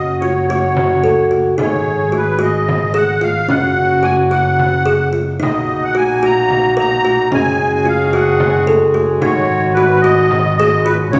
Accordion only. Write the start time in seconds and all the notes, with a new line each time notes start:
Already playing: D#5
0.20 C#5
0.47 C#5
1.62 C#5
2.16 B4
2.42 D#5
2.96 F#5
3.23 F5
3.49 F#5
4.04 G#5
4.31 F#5
5.42 D#5
5.83 F#5
5.97 G#5
6.25 A#5
6.79 A#5
7.34 G#5
7.75 G#5
7.88 F5
8.14 F#5
9.22 C#5
9.74 B4
10.01 D#5
10.57 D#5
10.84 B4
11.12 C#5